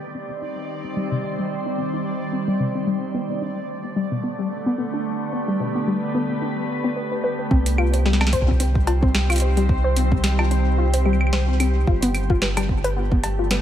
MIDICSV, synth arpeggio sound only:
0, 0, Header, 1, 2, 480
1, 0, Start_track
1, 0, Tempo, 545455
1, 847, Time_signature, 4, 2, 24, 8
1, 11983, End_track
2, 0, Start_track
2, 0, Title_t, "Synth arpeggio sound"
2, 0, Program_c, 0, 84
2, 128, Note_on_c, 0, 60, 97
2, 216, Note_off_c, 0, 60, 0
2, 262, Note_on_c, 0, 60, 77
2, 331, Note_off_c, 0, 60, 0
2, 368, Note_on_c, 0, 63, 80
2, 421, Note_off_c, 0, 63, 0
2, 741, Note_on_c, 0, 60, 73
2, 811, Note_off_c, 0, 60, 0
2, 848, Note_on_c, 0, 55, 99
2, 975, Note_off_c, 0, 55, 0
2, 981, Note_on_c, 0, 48, 94
2, 1023, Note_off_c, 0, 48, 0
2, 1087, Note_on_c, 0, 60, 70
2, 1215, Note_off_c, 0, 60, 0
2, 1222, Note_on_c, 0, 55, 95
2, 1291, Note_off_c, 0, 55, 0
2, 1462, Note_on_c, 0, 60, 98
2, 1531, Note_off_c, 0, 60, 0
2, 1567, Note_on_c, 0, 60, 70
2, 1656, Note_off_c, 0, 60, 0
2, 1702, Note_on_c, 0, 63, 75
2, 1743, Note_off_c, 0, 63, 0
2, 2046, Note_on_c, 0, 60, 73
2, 2135, Note_off_c, 0, 60, 0
2, 2180, Note_on_c, 0, 55, 98
2, 2281, Note_off_c, 0, 55, 0
2, 2286, Note_on_c, 0, 48, 96
2, 2340, Note_off_c, 0, 48, 0
2, 2421, Note_on_c, 0, 60, 75
2, 2522, Note_off_c, 0, 60, 0
2, 2526, Note_on_c, 0, 55, 96
2, 2615, Note_off_c, 0, 55, 0
2, 2766, Note_on_c, 0, 59, 98
2, 2855, Note_off_c, 0, 59, 0
2, 2901, Note_on_c, 0, 59, 70
2, 2971, Note_off_c, 0, 59, 0
2, 3006, Note_on_c, 0, 62, 71
2, 3060, Note_off_c, 0, 62, 0
2, 3380, Note_on_c, 0, 59, 73
2, 3451, Note_off_c, 0, 59, 0
2, 3487, Note_on_c, 0, 55, 96
2, 3615, Note_off_c, 0, 55, 0
2, 3621, Note_on_c, 0, 47, 97
2, 3663, Note_off_c, 0, 47, 0
2, 3727, Note_on_c, 0, 59, 83
2, 3855, Note_off_c, 0, 59, 0
2, 3862, Note_on_c, 0, 55, 97
2, 3931, Note_off_c, 0, 55, 0
2, 4103, Note_on_c, 0, 59, 104
2, 4172, Note_off_c, 0, 59, 0
2, 4208, Note_on_c, 0, 59, 81
2, 4296, Note_off_c, 0, 59, 0
2, 4342, Note_on_c, 0, 62, 76
2, 4384, Note_off_c, 0, 62, 0
2, 4688, Note_on_c, 0, 59, 80
2, 4776, Note_off_c, 0, 59, 0
2, 4821, Note_on_c, 0, 55, 100
2, 4922, Note_off_c, 0, 55, 0
2, 4928, Note_on_c, 0, 47, 97
2, 4981, Note_off_c, 0, 47, 0
2, 5062, Note_on_c, 0, 59, 77
2, 5162, Note_off_c, 0, 59, 0
2, 5168, Note_on_c, 0, 55, 94
2, 5256, Note_off_c, 0, 55, 0
2, 5408, Note_on_c, 0, 59, 100
2, 5496, Note_off_c, 0, 59, 0
2, 5542, Note_on_c, 0, 59, 77
2, 5611, Note_off_c, 0, 59, 0
2, 5647, Note_on_c, 0, 62, 80
2, 5700, Note_off_c, 0, 62, 0
2, 6021, Note_on_c, 0, 59, 102
2, 6063, Note_off_c, 0, 59, 0
2, 6127, Note_on_c, 0, 71, 84
2, 6216, Note_off_c, 0, 71, 0
2, 6263, Note_on_c, 0, 71, 75
2, 6304, Note_off_c, 0, 71, 0
2, 6368, Note_on_c, 0, 71, 97
2, 6456, Note_off_c, 0, 71, 0
2, 6503, Note_on_c, 0, 71, 73
2, 6544, Note_off_c, 0, 71, 0
2, 6608, Note_on_c, 0, 60, 101
2, 6661, Note_off_c, 0, 60, 0
2, 6848, Note_on_c, 0, 65, 101
2, 6936, Note_off_c, 0, 65, 0
2, 6983, Note_on_c, 0, 72, 76
2, 7052, Note_off_c, 0, 72, 0
2, 7089, Note_on_c, 0, 55, 100
2, 7176, Note_off_c, 0, 55, 0
2, 7329, Note_on_c, 0, 72, 106
2, 7456, Note_off_c, 0, 72, 0
2, 7463, Note_on_c, 0, 60, 81
2, 7532, Note_off_c, 0, 60, 0
2, 7568, Note_on_c, 0, 60, 83
2, 7621, Note_off_c, 0, 60, 0
2, 7807, Note_on_c, 0, 65, 79
2, 7896, Note_off_c, 0, 65, 0
2, 7941, Note_on_c, 0, 60, 104
2, 7983, Note_off_c, 0, 60, 0
2, 8181, Note_on_c, 0, 65, 108
2, 8251, Note_off_c, 0, 65, 0
2, 8288, Note_on_c, 0, 72, 76
2, 8376, Note_off_c, 0, 72, 0
2, 8422, Note_on_c, 0, 55, 103
2, 8491, Note_off_c, 0, 55, 0
2, 8662, Note_on_c, 0, 72, 100
2, 8762, Note_off_c, 0, 72, 0
2, 8768, Note_on_c, 0, 60, 75
2, 8856, Note_off_c, 0, 60, 0
2, 8903, Note_on_c, 0, 60, 76
2, 8944, Note_off_c, 0, 60, 0
2, 9142, Note_on_c, 0, 65, 76
2, 9211, Note_off_c, 0, 65, 0
2, 9249, Note_on_c, 0, 60, 101
2, 9301, Note_off_c, 0, 60, 0
2, 9488, Note_on_c, 0, 65, 105
2, 9576, Note_off_c, 0, 65, 0
2, 9623, Note_on_c, 0, 72, 78
2, 9692, Note_off_c, 0, 72, 0
2, 9728, Note_on_c, 0, 55, 103
2, 9816, Note_off_c, 0, 55, 0
2, 9968, Note_on_c, 0, 72, 101
2, 10096, Note_off_c, 0, 72, 0
2, 10103, Note_on_c, 0, 60, 80
2, 10172, Note_off_c, 0, 60, 0
2, 10209, Note_on_c, 0, 60, 79
2, 10261, Note_off_c, 0, 60, 0
2, 10448, Note_on_c, 0, 65, 81
2, 10536, Note_off_c, 0, 65, 0
2, 10582, Note_on_c, 0, 59, 103
2, 10624, Note_off_c, 0, 59, 0
2, 10824, Note_on_c, 0, 65, 98
2, 10892, Note_off_c, 0, 65, 0
2, 10929, Note_on_c, 0, 71, 79
2, 11017, Note_off_c, 0, 71, 0
2, 11062, Note_on_c, 0, 55, 102
2, 11131, Note_off_c, 0, 55, 0
2, 11302, Note_on_c, 0, 71, 106
2, 11402, Note_off_c, 0, 71, 0
2, 11409, Note_on_c, 0, 59, 84
2, 11496, Note_off_c, 0, 59, 0
2, 11544, Note_on_c, 0, 59, 75
2, 11585, Note_off_c, 0, 59, 0
2, 11783, Note_on_c, 0, 65, 77
2, 11852, Note_off_c, 0, 65, 0
2, 11888, Note_on_c, 0, 59, 102
2, 11941, Note_off_c, 0, 59, 0
2, 11983, End_track
0, 0, End_of_file